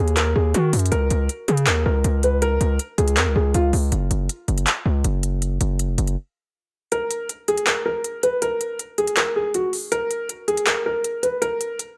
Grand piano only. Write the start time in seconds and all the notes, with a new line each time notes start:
Already playing: G#4
0.17 A#4
0.35 G#4
0.54 F#4
0.92 A#4
1.48 G#4
1.67 A#4
1.86 A#4
2.24 B4
2.42 A#4
2.98 G#4
3.17 A#4
3.36 G#4
3.55 F4
6.92 A#4
7.48 G#4
7.67 A#4
7.86 A#4
8.23 B4
8.42 A#4
8.98 G#4
9.17 A#4
9.36 G#4
9.54 F#4
9.92 A#4
10.48 G#4
10.67 A#4
10.86 A#4
11.23 B4
11.42 A#4